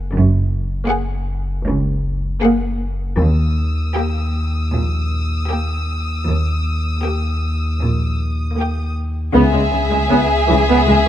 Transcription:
Already playing: F#1
0.12 F#1 F#2
0.87 A#3 G#4 F#5
1.66 C#2
2.42 A#3 G#4 F#5
3.18 D#2 D#6 E6
3.97 A#3 G4 G5
4.73 A#1 A#2
5.50 A#3 G4 G5
6.27 D#2
7.04 A#3 G4 G5
7.81 A#1 A#2
8.57 A#3 G4 G5
9.34 C#2 C#3 B3 G#4 E5
9.53 C#2 G#3
9.72 C#3
9.91 C#2 G#3
10.10 C#2 B3 C#4
10.49 C#2 C#3 E3
10.68 C#2 B3
10.88 C#2 C#3 G#3

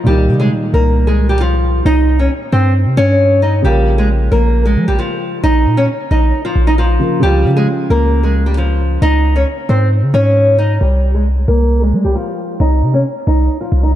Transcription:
0.03 C2 A#2 D#3 G3 G4
0.08 A#3 D#4
0.29 C3
0.40 G#3 G#4
0.74 C2 A#3 A#4
1.07 G#3 G#4
1.29 G3 G4
1.41 F3 F4
1.85 C2 D#4 D#5
2.19 C#4 C#5
2.52 G2 C4 C5
2.86 C3
2.97 G2 C#4 C#5
3.42 D#4 D#5
3.62 A#1 C#3 F3 G3 A#3 G4
3.66 F4 A#4
3.98 G#3 G#4
4.32 A#1 A#3 A#4
4.65 G#3 G#4
4.76 F3
4.88 A#1 G3 G4
4.99 F3 F4
5.44 A#1 D#4 D#5
5.66 A#2
5.77 C#4 C#5
6.11 A#1 D#4 D#5
6.45 F3 F4
6.56 A#1
6.67 D#4 D#5
6.78 F3 F4
6.99 C#3 F3 A#3 F4 A#4
7.19 C#2 C#3 F3 G4
7.24 G3 C#4 F4
7.45 C#3
7.56 G#3 G#4
7.90 C#2 A#3 A#4
8.23 G#3 G#4
8.46 G3 G4
8.57 F3 F4
9.02 C#2 D#4 D#5
9.36 C#4 C#5
9.69 G#2 C4 C5
10.03 C#3
10.14 G#2 C#4 C#5
10.58 D#4 D#5
10.81 C2 G3 G4
11.14 G#3 G#4
11.48 C2 A#3 A#4
11.82 G#3 G#4
11.93 G3
12.04 C2 G3 G4
12.15 F3 F4
12.60 C2 D#4 D#5
12.82 C3
12.94 C#4 C#5
13.27 C2 D#4 D#5
13.61 F3 F4
13.72 C2
13.83 D#4 D#5

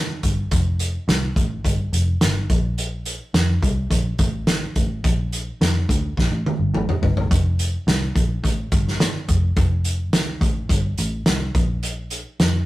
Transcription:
Already playing: G1
0.23 G1, kick, closed hi-hat
0.51 F1, kick, closed hi-hat
0.79 closed hi-hat
1.08 C2, snare, closed hi-hat
1.36 A1, kick, closed hi-hat
1.64 G1, kick, closed hi-hat
1.93 F1, closed hi-hat
2.21 G1, snare, closed hi-hat
2.50 A#1, kick, closed hi-hat
2.78 closed hi-hat
3.06 closed hi-hat
3.34 F2, snare, closed hi-hat
3.62 C2, kick, closed hi-hat
3.90 A#1, kick, closed hi-hat
4.19 A1, kick, closed hi-hat
4.47 snare, closed hi-hat
4.76 A1, kick, closed hi-hat
5.04 A#1, kick, closed hi-hat
5.32 closed hi-hat
5.61 F2, snare, closed hi-hat
5.89 D2, kick, closed hi-hat
6.17 A#1, kick, snare
6.32 A1
6.46 high tom
6.59 G1
6.74 A1, mid tom
6.89 mid tom
7.02 G1, floor tom
7.17 floor tom
7.31 F1, kick, closed hi-hat
7.59 closed hi-hat
7.87 C2, snare, closed hi-hat
8.15 A#1, kick, closed hi-hat
8.43 A1, kick, closed hi-hat
8.72 G1, kick, closed hi-hat
8.88 snare
9.00 snare, closed hi-hat
9.28 F1, kick, closed hi-hat
9.56 F1, kick, closed hi-hat
9.84 closed hi-hat
10.13 C2, snare, closed hi-hat
10.41 A1, kick, closed hi-hat
10.69 G1, kick, closed hi-hat
10.98 A1, closed hi-hat
11.26 C2, snare, closed hi-hat
11.55 A#1, kick, closed hi-hat
11.83 closed hi-hat
12.10 closed hi-hat
12.40 F2, snare, closed hi-hat

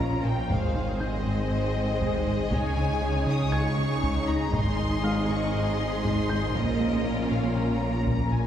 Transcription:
Already playing: A#1 A#2 F3 C#4 F4 A#4 C#5 D#5 A#5 D#6
0.00 A#2 A#3, taiko
0.25 A#2 A#4 G5
0.49 G#1 G#2 G#3 C4 D#4 G#4 C5 F5, taiko
0.76 G#3 D#4
1.00 G#3 D#4 D#5 G6
1.26 G#2 G#3
1.51 G#2
1.76 G#3
2.01 G#2 G#3, taiko
2.27 G#2 G#4
2.52 C#2 C#3 D#4 C#5 G#5, taiko
2.77 C#3 C#4
3.02 C#3 C#4
3.27 C#2 C#3 D#6
3.52 C#2 G#5 C#6 G#6
3.78 C#3
4.03 C#2 C#3, taiko
4.28 C#2 D#4 A#5
4.53 G#1 G#2 G#3 G#4 C5 D#5 C6, taiko
4.79 G#3 D#4
5.04 G#3 D#4 F5 F6
5.29 G#2 G#3 C#6
5.55 G#2 C6
5.80 G#3
6.05 G#2 G#3, taiko
6.29 G#2 G#4 G6
6.54 A#1 A#2 F3 A#3 C#4 F4 A#4 C#5 D#5, taiko
6.80 A#3 F4
7.06 A#3 F4
7.31 A#2 A#3 F5
7.56 A#2 A#5
7.81 A#3
8.07 A#2 A#3, taiko
8.32 A#2 A#4 G#5

